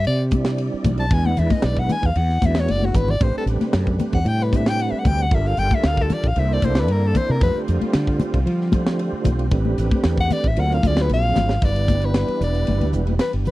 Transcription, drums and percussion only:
0.05 ride
0.31 kick, hi-hat pedal, ride, high conga
0.45 snare, ride
0.58 ride
0.84 kick, hi-hat pedal, ride, high conga, low conga
0.97 ride
1.10 kick, ride, low conga
1.26 high conga
1.37 hi-hat pedal, ride, low conga
1.50 kick, snare, ride, high conga
1.62 snare, ride
1.77 kick
1.89 hi-hat pedal, ride, high conga, low conga
2.03 kick
2.15 ride
2.29 snare
2.42 kick, hi-hat pedal, ride, high conga
2.55 snare, ride, high conga
2.68 ride, high conga
2.82 high conga
2.94 kick, hi-hat pedal, ride, low conga
3.08 low conga
3.21 kick, ride, low conga
3.47 hi-hat pedal, ride
3.61 snare, ride, high conga
3.73 snare, ride
3.87 kick
3.99 hi-hat pedal, ride, high conga, low conga
4.12 kick, ride
4.26 ride
4.40 snare
4.53 kick, hi-hat pedal, ride, high conga
4.66 snare, ride
4.79 ride
5.05 kick, hi-hat pedal, ride, high conga, low conga
5.18 ride
5.31 kick, ride, low conga
5.45 snare
5.57 hi-hat pedal, ride
5.70 kick, ride, high conga
5.84 snare, ride
5.97 kick
6.10 snare, hi-hat pedal, ride, high conga, low conga
6.24 kick
6.36 ride
6.62 kick, hi-hat pedal, ride, high conga
6.75 snare, ride
6.88 ride
7.15 kick, hi-hat pedal, ride, high conga, low conga
7.41 kick, ride, low conga
7.68 hi-hat pedal, ride
7.81 ride, high conga
7.93 snare, ride
8.07 kick
8.20 hi-hat pedal, ride, high conga, low conga
8.34 kick, ride
8.47 ride
8.61 snare
8.72 kick, hi-hat pedal, ride, high conga
8.86 snare, ride
8.99 ride
9.24 kick, hi-hat pedal, ride, high conga, low conga
9.39 ride
9.51 kick, ride, low conga
9.65 high conga
9.78 hi-hat pedal, ride
9.91 kick, ride, high conga
10.04 snare, ride
10.17 kick
10.30 snare, hi-hat pedal, ride, high conga, low conga
10.44 kick
10.56 ride
10.71 snare
10.83 kick, hi-hat pedal, ride, high conga
10.97 snare, ride
11.09 ride
11.36 snare, hi-hat pedal, high conga, low conga
11.49 snare
11.62 kick, ride
11.76 ride
11.88 kick, snare, hi-hat pedal, high conga
12.02 ride
12.14 snare, ride
12.28 ride
12.41 snare, hi-hat pedal, low conga
12.54 snare, ride
12.67 ride, high conga
12.81 ride, high conga
12.93 hi-hat pedal
13.07 ride, high conga
13.19 snare, ride
13.33 snare, ride
13.45 hi-hat pedal, low conga

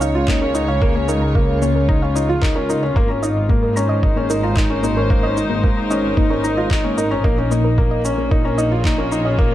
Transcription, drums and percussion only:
0.01 shaker
0.28 kick, clap
0.55 shaker
0.82 kick
1.09 shaker
1.35 kick
1.62 shaker
1.89 kick
2.16 shaker
2.42 kick, clap
2.70 shaker
2.96 kick
3.23 shaker
3.50 kick
3.77 shaker
4.03 kick
4.30 shaker
4.57 kick, clap
4.84 shaker
5.10 kick
5.37 shaker
5.64 kick
5.91 shaker
6.17 kick
6.44 shaker
6.71 kick, clap
6.98 shaker
7.24 kick
7.52 shaker
7.78 kick
8.05 shaker
8.31 kick
8.59 shaker
8.85 kick, clap
9.12 shaker
9.39 kick

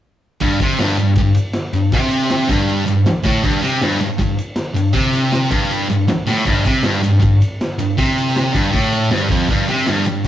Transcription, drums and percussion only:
0.40 kick, ride, shaker
0.60 kick, ride, shaker
0.79 snare, ride, shaker
0.97 ride, shaker
1.08 shaker
1.16 kick, ride, shaker
1.35 ride, shaker
1.53 snare, ride, shaker
1.73 ride, shaker
1.84 shaker
1.92 kick, ride, shaker
2.11 ride, shaker
2.30 snare, ride, shaker
2.49 kick, ride, shaker
2.60 shaker
2.68 ride, shaker
2.87 ride, shaker
3.06 snare, ride, shaker
3.23 kick, ride, shaker
3.34 shaker
3.44 kick, ride, shaker
3.63 ride, shaker
3.81 snare, ride, shaker
4.00 ride
4.12 shaker
4.19 kick, ride, shaker
4.38 ride, shaker
4.56 snare, ride, shaker
4.76 ride, shaker
4.87 shaker
4.94 kick, ride, shaker
5.13 ride, shaker
5.32 snare, ride, shaker
5.51 kick, ride, shaker
5.63 shaker
5.71 ride, shaker
5.90 ride, shaker
6.01 shaker
6.08 snare, ride, shaker
6.28 snare, shaker
6.37 shaker
6.46 kick, crash, shaker
6.65 kick, ride, shaker
6.83 snare, ride, shaker
7.03 ride, shaker
7.22 kick, ride, shaker
7.42 ride, shaker
7.61 snare, ride, shaker
7.79 ride, shaker
7.90 shaker
7.98 kick, ride, shaker
8.18 ride, shaker
8.36 snare, ride, shaker
8.55 kick, ride, shaker
8.66 shaker
8.73 kick, ride, shaker
8.92 ride, shaker
9.11 snare, ride, shaker
9.30 kick, ride, shaker
9.40 shaker
9.48 kick, ride, shaker
9.68 ride, shaker
9.86 snare, ride, shaker
10.05 ride, shaker
10.25 kick, ride, shaker

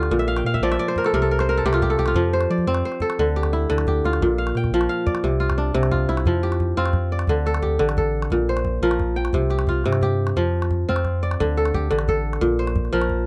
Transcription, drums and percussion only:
0.03 calabash click
0.11 calabash thump
0.37 calabash click
0.54 calabash thump
0.72 calabash click
0.88 calabash click
0.96 calabash thump
1.05 calabash click
1.39 calabash thump, calabash click
1.73 calabash click
1.82 calabash thump
1.98 calabash click
2.06 calabash click
2.14 calabash thump
2.41 calabash click
2.58 calabash thump
2.75 calabash click
2.92 calabash click
3.00 calabash thump
3.10 calabash click
3.43 calabash thump, calabash click
3.78 calabash click
3.87 calabash thump
4.05 calabash click
4.13 calabash click
4.22 calabash thump, calabash click
4.47 calabash click
4.55 calabash click
4.64 calabash thump, calabash click
4.81 calabash click
5.07 calabash thump
5.15 calabash click
5.50 calabash thump, calabash click
5.83 calabash click
5.92 calabash thump, calabash click
6.09 calabash click
6.17 calabash click
6.26 calabash thump
6.52 calabash click
6.60 calabash thump
6.86 calabash click
6.93 calabash thump, calabash click
7.19 calabash click
7.27 calabash thump
7.46 calabash click
7.54 calabash click
7.62 calabash thump
7.80 calabash click
7.89 calabash click
7.97 calabash thump
8.22 calabash click
8.30 calabash thump
8.57 calabash click
8.65 calabash thump
8.91 calabash click
8.99 calabash thump, calabash click
9.25 calabash click
9.33 calabash thump
9.50 calabash click
9.59 calabash click
9.67 calabash thump
9.84 calabash click
9.93 calabash click
10.01 calabash thump
10.27 calabash click
10.36 calabash thump
10.62 calabash click
10.71 calabash thump
10.96 calabash click
11.05 calabash thump, calabash click
11.31 calabash click
11.40 calabash thump
11.58 calabash click
11.65 calabash click
11.74 calabash thump
11.91 calabash click
11.99 calabash click
12.08 calabash thump
12.33 calabash click
12.42 calabash thump
12.67 calabash click
12.76 calabash thump
12.85 calabash click
13.02 calabash click
13.09 calabash thump

